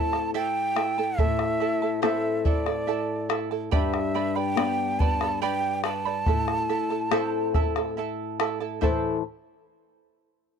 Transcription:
Already playing: nylon-string guitar A2 C4 E4 A4, charango E4 A4 E5 A5, quena A5
0.13 charango E4 A4 A5, bombo rim
0.34 charango E4 A4 C5 E5 A5, quena G5
0.76 charango E4 A4 E5 A5, bombo rim
0.98 charango E4 A4 A5
1.18 nylon-string guitar A2, charango E4 A4 E5 A5, quena E5, bombo low
1.39 bombo rim
1.60 charango E4 A4 E5 A5, bombo rim
1.82 charango E4 A4 A5
2.02 nylon-string guitar C4 E4 A4, charango E4 A4 C5 E5 A5, quena E5, bombo rim
2.45 charango E4 A4 E5 A5, quena D5, bombo low
2.66 charango E4 A4 A5, bombo rim
2.87 charango E4 A4 E5 A5
3.29 charango E4 A4 E5 A5, bombo rim
3.51 charango E4 A4 A5
3.71 nylon-string guitar G2, charango G4 B4 D5 G5 B5, quena E5, bombo low
3.94 bombo rim
4.14 charango B4 D5 G5 B5, bombo rim
4.36 charango B4 D5 B5, quena G5
4.56 nylon-string guitar B3 D4 G4, charango B4 D5 G5 B5, bombo rim
4.99 charango B4 D5 G5 B5, quena A5, bombo low
5.21 charango B4 D5 B5, bombo rim
5.42 charango G4 B4 D5 G5 B5, quena G5
5.84 charango B4 D5 G5 B5, quena A5, bombo rim
6.05 charango B4 D5 B5
6.26 nylon-string guitar A2, charango E4 A4 E5 A5, bombo rim, bombo low
6.48 bombo rim
6.69 charango E4 A4 E5 A5, bombo rim
6.90 charango E4 A4 A5
7.11 nylon-string guitar C4 E4 A4, charango E4 A4 C5 E5 A5, bombo rim
7.54 charango E4 A4 E5 A5, bombo rim, bombo low
7.76 charango E4 A4 A5, bombo rim
7.97 charango E4 A4 E5 A5
8.40 charango E4 A4 E5 A5, bombo rim
8.60 charango E4 A4 A5
8.81 nylon-string guitar A2 E3 A3 E4 C5 A5, charango E4 A4 C5 E5 A5, bombo low

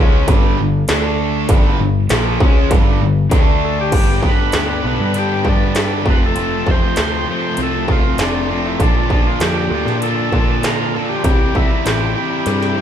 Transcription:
Already playing: picked electric bass C#2
0.00 overdriven electric guitar C#3 G#3 C#4
0.28 picked electric bass G1, overdriven electric guitar G2 D3 G3, kick, closed hi-hat
0.57 picked electric bass G1, overdriven electric guitar G2 D3
0.88 picked electric bass D2, overdriven electric guitar D3 A3 D4, snare, closed hi-hat
1.48 picked electric bass G1, overdriven electric guitar G2 D3 G3, kick, closed hi-hat
1.78 picked electric bass G1, overdriven electric guitar G2 D3
2.09 picked electric bass A#1, overdriven electric guitar A#2 F3 A#3, snare, closed hi-hat
2.40 picked electric bass C#2, overdriven electric guitar C#3 G#3 C#4, kick
2.70 picked electric bass G1, overdriven electric guitar G2 D3 G3, kick, closed hi-hat
3.01 picked electric bass G1, overdriven electric guitar G2 D3
3.29 picked electric bass D2, overdriven electric guitar D3 A3 D4, kick, closed hi-hat
3.65 tonewheel organ A4
3.81 tonewheel organ G4
3.92 picked electric bass G1, overdriven electric guitar G2 D3 G3 B3 D4 G4, kick, closed hi-hat, crash
4.21 overdriven electric guitar G2 D3 G3 B3 D4 G4, kick
4.27 tonewheel organ B4
4.52 picked electric bass D2, overdriven electric guitar G2 D3 G3 B3 D4 G4, snare, closed hi-hat
4.82 picked electric bass B1, overdriven electric guitar G2 D3 G3 B3 D4 G4
4.87 tonewheel organ B4
5.00 picked electric bass G2
5.13 overdriven electric guitar G2 D3 G3 B3 D4 G4, closed hi-hat
5.19 tonewheel organ G4
5.44 overdriven electric guitar G2 D3 G3 B3 D4 G4, picked electric bass G2, kick
5.49 tonewheel organ D4
5.73 overdriven electric guitar G2 D3 G3 B3 D4 G4, snare, closed hi-hat
6.03 picked electric bass F1, overdriven electric guitar F2 C3 F3 A3 C4 F4, kick
6.10 tonewheel organ B4
6.26 tonewheel organ A4
6.34 overdriven electric guitar F2 C3 F3 A3 C4 F4, closed hi-hat
6.66 picked electric bass F1, overdriven electric guitar F2 C3 F3 A3 C4 F4, kick
6.71 tonewheel organ C5
6.96 picked electric bass D2, overdriven electric guitar F2 C3 F3 A3 C4 F4, snare, closed hi-hat
7.28 overdriven electric guitar F2 C3 F3 A3 C4 F4, tonewheel organ C5
7.57 picked electric bass C2, overdriven electric guitar F2 C3 F3 A3 C4 F4, closed hi-hat
7.63 tonewheel organ A4
7.87 overdriven electric guitar F2 C3 F3 A3 C4 F4, kick
7.92 tonewheel organ F4
8.18 picked electric bass F1, overdriven electric guitar F2 C3 F3 A3 C4 F4, tonewheel organ D4, snare, closed hi-hat
8.49 overdriven electric guitar F2 C3 F3 A3 C4 F4
8.66 tonewheel organ E4
8.79 picked electric bass A#1, overdriven electric guitar A#2 D3 A#3 D4 F4, distorted electric guitar F3, tonewheel organ D4, kick, closed hi-hat
9.09 overdriven electric guitar A#2 D3 A#3 D4 F4, distorted electric guitar F3, kick
9.27 tonewheel organ F4
9.39 picked electric bass F2, overdriven electric guitar A#2 D3 A#3 D4 F4, distorted electric guitar F3, tonewheel organ G4, snare, closed hi-hat
9.70 picked electric bass D2, overdriven electric guitar A#2 D3 A#3 D4 F4, distorted electric guitar F3
9.85 picked electric bass A#2, snare
10.00 overdriven electric guitar A#2 D3 A#3 D4 F4, distorted electric guitar F3, tonewheel organ A4, closed hi-hat
10.31 overdriven electric guitar A#2 D3 A#3 D4 F4, picked electric bass A#2, distorted electric guitar F3, kick
10.62 overdriven electric guitar A#2 D3 A#3 D4 F4, distorted electric guitar F3, tonewheel organ A#4, snare, closed hi-hat
10.93 overdriven electric guitar A#2 D3 A#3 D4 F4, distorted electric guitar F3, tonewheel organ A4
11.09 tonewheel organ G4
11.24 picked electric bass C2, overdriven electric guitar C3 E3 G3 C4 E4, tonewheel organ G4, kick, closed hi-hat
11.55 picked electric bass C2, overdriven electric guitar C3 E3 G3 C4 E4, tonewheel organ E4, kick
11.84 picked electric bass A1, overdriven electric guitar C3 E3 G3 C4 E4, tonewheel organ G4, snare, closed hi-hat
12.14 overdriven electric guitar C3 E3 G3 C4 E4, tonewheel organ G4
12.46 picked electric bass G2, overdriven electric guitar C3 E3 G3 C4 E4, snare, closed hi-hat
12.62 snare
12.76 overdriven electric guitar C3 E3 G3 C4 E4

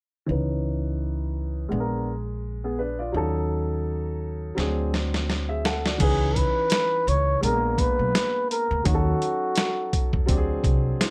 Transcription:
0.26 upright bass C#2, upright piano E3 C#4 D#4
0.31 upright piano B4
1.69 upright bass A#1, upright piano G#3 B3 D4
1.74 upright piano G#4
1.80 upright piano A#4
2.64 upright piano B3 G#4
2.79 upright piano D4 B4
2.99 upright piano F4 D5
3.12 upright bass D#2, upright piano F#3 C#4 D#4
3.17 upright piano A4
4.55 upright bass D2, upright piano F#3 C4 D4, snare
4.60 upright piano G#4
4.94 snare
5.14 snare
5.30 snare
5.49 upright piano G#4 E5
5.65 upright piano A4 F#5, snare
5.86 upright piano F#4 D5, snare
5.98 upright bass C#2, upright piano E3 C#4 D#4, muted trumpet G#4, kick, closed hi-hat, crash
6.03 upright piano B4
6.36 muted trumpet B4, kick, closed hi-hat
6.70 snare, closed hi-hat
7.07 upright bass C#2, muted trumpet C#5, closed hi-hat
7.41 upright bass A#1, upright piano G#3 B3 D4, muted trumpet A#4, closed hi-hat
7.45 upright piano G#4
7.52 upright piano A#3
7.78 muted trumpet B4, kick, closed hi-hat
7.99 upright bass B1
8.15 snare, closed hi-hat
8.51 muted trumpet A#4, closed hi-hat
8.71 upright bass D2
8.84 upright bass D#2, upright piano F#3 C#4 D#4, muted trumpet F#4, kick, closed hi-hat
8.88 upright piano F#4
8.94 upright piano A4
9.22 closed hi-hat
9.55 snare, closed hi-hat
9.93 kick, closed hi-hat
10.13 upright bass E2, kick
10.26 upright bass D2, upright piano F#3 C4 D4, kick, closed hi-hat
10.31 upright piano G4
10.37 upright piano G#4
10.64 upright bass C2, kick, closed hi-hat
11.00 upright piano E4 C5, snare, closed hi-hat

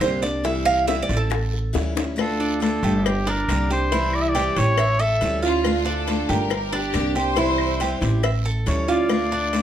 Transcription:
0.00 upright bass C2, steel-string acoustic guitar D3 G3 A#3 D4 G4, cuban tres C5, high bongo, low bongo, short guiro, claves
0.22 steel-string acoustic guitar A#3 D4 G4, cuban tres D5, high bongo, short guiro
0.44 steel-string acoustic guitar C3 E3 G3 C4 E4, cuban tres E5, high bongo, long guiro
0.65 cuban tres F5, claves
0.87 steel-string acoustic guitar C3 E3 G3 C4 E4, cuban tres E5, high bongo, short guiro
1.02 cuban tres D5
1.09 upright bass A1, steel-string acoustic guitar G3 C4 E4, high bongo, short guiro
1.17 cuban tres A4
1.30 muted steel-string acoustic guitar stroke, high bongo, long guiro, claves
1.54 high bongo
1.73 upright bass D2, steel-string acoustic guitar E3 G3 C#4 E4, high bongo, short guiro
1.95 steel-string acoustic guitar G3 C#4 E4, low bongo, short guiro
2.16 steel-string acoustic guitar D3 A3 D4 F4, cowbell, long guiro, claves
2.21 trumpet A4
2.40 cuban tres D4
2.60 steel-string acoustic guitar D3 A3 D4 F4, trumpet A4, cowbell, short guiro
2.83 upright bass G1, steel-string acoustic guitar A3 D4 F4, cuban tres G4, short guiro
3.05 trumpet G4, muted steel-string acoustic guitar stroke, cowbell, long guiro, claves
3.27 cuban tres D4, trumpet A#4, cowbell
3.48 upright bass C2, steel-string acoustic guitar D3 G3 A#3 D4 G4, cowbell, short guiro, claves
3.70 steel-string acoustic guitar A#3 D4 G4, cuban tres G4, trumpet C5, short guiro
3.92 steel-string acoustic guitar C3 E3 G3 C4 E4, cuban tres E4, cowbell, long guiro
4.13 trumpet D5, claves
4.21 trumpet E5
4.29 trumpet D5
4.35 steel-string acoustic guitar C3 E3 G3 C4 E4, cuban tres G4, cowbell, short guiro
4.56 upright bass A1, steel-string acoustic guitar G3 C4 E4, trumpet C#5, cowbell, short guiro
4.78 cuban tres E5, muted steel-string acoustic guitar stroke, cowbell, long guiro, claves
4.99 cuban tres A4, trumpet E5
5.21 upright bass D2, steel-string acoustic guitar E3 G3 C#4 E4, cowbell, short guiro
5.43 steel-string acoustic guitar G3 C#4 E4, cuban tres F4, violin section F4, short guiro
5.64 steel-string acoustic guitar D3 A3 D4 F4, cowbell, long guiro, claves
5.85 cuban tres D4, violin section A4
6.07 steel-string acoustic guitar D3 A3 D4 F4, cowbell, short guiro
6.29 upright bass G1, steel-string acoustic guitar A3 D4 F4, cuban tres G4, violin section A#4, short guiro
6.50 muted steel-string acoustic guitar stroke, cowbell, long guiro, claves
6.73 cuban tres D4, violin section G4, cowbell
6.93 upright bass C2, steel-string acoustic guitar D3 G3 A#3 D4 G4, cowbell, short guiro, claves
7.15 steel-string acoustic guitar A#3 D4 G4, cuban tres G4, violin section C5, short guiro
7.36 steel-string acoustic guitar C3 E3 G3 C4 E4, cuban tres E4, cowbell, long guiro
7.58 claves
7.80 steel-string acoustic guitar C3 E3 G3 C4 E4, cuban tres G4, cowbell, short guiro
8.01 upright bass A1, steel-string acoustic guitar G3 C4 E4, cowbell, short guiro
8.23 cuban tres E5, muted steel-string acoustic guitar stroke, cowbell, long guiro, claves
8.45 cuban tres A4
8.66 upright bass D2, steel-string acoustic guitar E3 G3 C#4 E4, trumpet C#5, cowbell, short guiro
8.88 steel-string acoustic guitar G3 C#4 E4, cuban tres F4, trumpet D5, short guiro
9.09 steel-string acoustic guitar D3 A3 D4 F4, cowbell, long guiro, claves
9.32 cuban tres D4
9.53 steel-string acoustic guitar D3 A3 D4 F4, cowbell, short guiro

